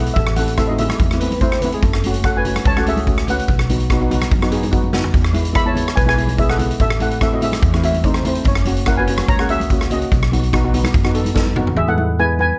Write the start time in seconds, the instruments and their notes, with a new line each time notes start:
Already playing: steel pan G#3 B3 E4 A4 F#5
0.07 closed hi-hat
0.14 upright bass A1, steel pan A4 E5, kick, closed hi-hat, low conga
0.27 cross-stick
0.36 steel pan A3 C4 E4 A4 F#5, closed hi-hat, high conga
0.48 closed hi-hat
0.58 steel pan A3 C4 E4 A4 E5, kick, cross-stick, closed hi-hat
0.68 steel pan A3 C4 D#4 F#4 D#5
0.78 steel pan A3 C4 E4 G#4 E5, closed hi-hat, low conga
0.89 cross-stick, closed hi-hat, high conga
1.00 upright bass E2, kick, closed hi-hat
1.11 steel pan A3 C4 E4, cross-stick
1.20 steel pan A3 C4 E4, soft synth lead B4, closed hi-hat
1.31 closed hi-hat, high conga
1.41 steel pan A3 C4 E4, soft synth lead C5, kick, closed hi-hat
1.52 cross-stick
1.61 steel pan A3 C4 E4, soft synth lead B4, closed hi-hat, low conga
1.72 soft synth lead G#4, closed hi-hat
1.81 upright bass F#1, soft synth lead A4, kick, closed hi-hat, low conga
1.93 cross-stick
2.04 steel pan A3 C#4 F#4, closed hi-hat, high conga
2.14 closed hi-hat
2.24 steel pan A3 C#4 F#4 A4 F#5, kick, cross-stick, closed hi-hat
2.35 steel pan A3 C#4 F#4 B4 G#5
2.45 steel pan A3 C#4 F#4, closed hi-hat, low conga
2.55 cross-stick, closed hi-hat, high conga
2.65 upright bass C#2, steel pan C#5 A5, kick, closed hi-hat
2.76 steel pan A3 C#4 F#4 A4 F#5, cross-stick
2.87 steel pan A3 C#4 F#4 G#4 E5, closed hi-hat
2.96 closed hi-hat, high conga
3.07 steel pan A3 C#4 F#4, kick, closed hi-hat
3.18 cross-stick
3.27 steel pan A3 C#4 F#4 B4 F#5, closed hi-hat, low conga
3.39 closed hi-hat
3.48 upright bass B1, kick, closed hi-hat, low conga
3.59 cross-stick
3.70 steel pan B3 D#4 F#4, closed hi-hat, high conga, low conga
3.80 closed hi-hat
3.90 steel pan B3 D#4 F#4, kick, cross-stick, closed hi-hat
4.00 steel pan B3 D#4 F#4
4.11 steel pan B3 D#4 F#4, closed hi-hat, high conga, low conga
4.22 cross-stick, closed hi-hat, high conga
4.31 upright bass F#2, kick, closed hi-hat
4.42 steel pan B3 D#4 F#4, cross-stick
4.51 steel pan B3 D#4 G#4, closed hi-hat
4.63 closed hi-hat, high conga
4.72 steel pan B3 D#4 F#4, kick, closed hi-hat
4.84 high conga
4.93 steel pan B3 D#4 F#4, snare, low conga
5.04 floor tom
5.14 upright bass E2, kick, closed hi-hat, low conga
5.25 cross-stick
5.33 steel pan G#3 B3 E4, closed hi-hat, high conga
5.45 closed hi-hat
5.53 steel pan G#3 B3 E4 E5 B5, kick, cross-stick, closed hi-hat
5.65 steel pan G#3 B3 E4 C#5 A5
5.74 steel pan G#3 B3 E4, closed hi-hat, low conga
5.88 cross-stick, closed hi-hat
5.96 upright bass B1, steel pan B4 G#5, kick, closed hi-hat
6.06 steel pan G#3 B3 E4 B4 G#5, cross-stick
6.17 steel pan G#3 B3 E4, closed hi-hat
6.27 closed hi-hat, high conga
6.37 steel pan G#3 B3 E4 G#4 E5, kick, closed hi-hat
6.50 steel pan A4 F#5, cross-stick
6.58 steel pan G#3 B3 E4, closed hi-hat, low conga
6.71 closed hi-hat
6.80 upright bass A1, steel pan A4 E5, kick, closed hi-hat, low conga
6.90 cross-stick
7.00 steel pan A3 C4 E4 A4 F#5, closed hi-hat, high conga
7.11 closed hi-hat
7.21 steel pan A3 C4 E4 A4 E5, kick, cross-stick, closed hi-hat
7.33 steel pan A3 C4 E4 F#4 D#5
7.41 steel pan A3 C4 E4 G#4 E5, closed hi-hat, low conga
7.52 cross-stick, closed hi-hat, high conga
7.62 upright bass E2, kick, closed hi-hat
7.74 steel pan A3 C4 E4, cross-stick
7.83 steel pan A3 C4 F#4, soft synth lead E5, closed hi-hat
7.92 closed hi-hat, high conga
8.04 steel pan A3 C4 D#4, soft synth lead C5, kick, closed hi-hat
8.14 cross-stick
8.22 steel pan A3 C4 E4, closed hi-hat, low conga
8.27 soft synth lead C5
8.35 closed hi-hat
8.44 upright bass F#1, soft synth lead C#5, kick, closed hi-hat, low conga
8.55 cross-stick
8.65 steel pan A#3 C#4 F#4, closed hi-hat, high conga
8.77 closed hi-hat
8.86 steel pan A#3 C#4 E4 A#4 F#5, kick, cross-stick, closed hi-hat
8.97 steel pan A#3 C#4 F#4 B4 G#5
9.07 steel pan A#3 C#4 F#4, closed hi-hat, low conga
9.18 cross-stick, closed hi-hat, high conga
9.28 upright bass C#2, steel pan C#5 A#5, kick, closed hi-hat
9.39 steel pan A#3 C#4 G#4 A#4 F#5, cross-stick
9.49 steel pan A#3 C#4 F#4 G#4 E5, closed hi-hat
9.60 closed hi-hat, high conga
9.70 steel pan A#3 C#4 F#4, kick, closed hi-hat
9.81 cross-stick
9.90 steel pan A#3 C#4 F#4 D#5, closed hi-hat, low conga
10.02 closed hi-hat
10.12 upright bass B1, kick, closed hi-hat, low conga
10.23 cross-stick
10.32 steel pan B3 D#4 F#4, closed hi-hat, high conga, low conga
10.43 closed hi-hat
10.53 steel pan B3 D#4 F#4, kick, cross-stick, closed hi-hat
10.64 steel pan B3 D#4 F#4
10.74 steel pan B3 D#4 F#4, closed hi-hat, high conga, low conga
10.84 cross-stick, closed hi-hat, high conga
10.94 upright bass F#2, kick, closed hi-hat
11.04 steel pan B3 D#4 F#4, cross-stick
11.14 steel pan B3 D#4 A4, closed hi-hat
11.25 closed hi-hat, high conga
11.35 steel pan B3 D#4 A4, kick, snare
11.46 high conga
11.56 steel pan B3 D#4 F#4, mid tom, low conga
11.67 floor tom
11.76 upright bass E2, steel pan G#4 E5
11.87 steel pan G#3 B3 E4 A4 F#5
11.97 steel pan G#3 B3 E4, high conga
12.19 steel pan G#3 B3 E4 B4 G#5
12.39 steel pan B4 G#5, high conga